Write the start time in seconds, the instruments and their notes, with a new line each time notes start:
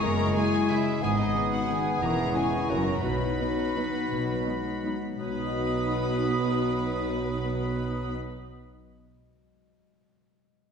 Already playing: harp G#3, french horn section E4, flute section C#6
0.02 double bass section F#1, cello section F#2, harp F#2, bassoon G#3, french horn section G#3, clarinet E4, oboe G#4, violin section A#4 A#5
0.18 harp C#4
0.35 viola section G#3 E4, harp D#4, violin section G#4 G#5
0.52 harp C#4
0.69 harp C#3, viola section G#3 E4, violin section E4 E5
0.86 harp C#4
1.01 double bass section G#1, harp G#2, cello section G#2, bassoon B3, french horn section B3 D#4, clarinet D#4, violin section G#4 G#5, flute section D#6
1.18 harp B3, violin section D#4 D#5
1.35 viola section B3 D#4, harp C#4
1.52 harp B3, violin section F#4 F#5
1.69 harp D#3, viola section B3 D#4, violin section G#4 G#5
1.86 harp B3
2.01 double bass section E1, cello section E2, harp E2, french horn section C#4 E4, clarinet E4, oboe G#4, violin section A#4 A#5, flute section C#6
2.18 harp C#4
2.35 viola section C#4 E4, harp D#4, violin section G#4 G#5
2.53 harp C#4
2.70 double bass section F#1, harp F#2, cello section F#2, bassoon F#3, viola section C#4 E4, oboe F#4, violin section A#4 A#5
2.87 harp E4 F#4
3.03 double bass section B1, harp B2, cello section B2, bassoon F#3, french horn section B3 D#4, clarinet D#4, oboe F#4, violin section B4 B5, flute section B5
3.21 harp B3
3.39 viola section B3 D#4, harp C#4
3.58 harp B3
3.76 harp F#3, viola section B3 D#4
3.93 harp B3
4.11 double bass section B1, harp B2, cello section B2
4.28 harp F#3
4.46 harp G#3, viola section B3 D#4
4.65 harp B3
4.83 harp F#3, viola section B3 D#4
5.01 harp B3
5.18 double bass section B1, harp B2, cello section B2, bassoon F#3, french horn section B3 D#4, viola section B3 D#4, clarinet F#4, oboe B4, violin section B4 B5, flute section D#6
5.26 harp B3
5.32 harp D#4
5.40 harp F#4
5.47 harp D#5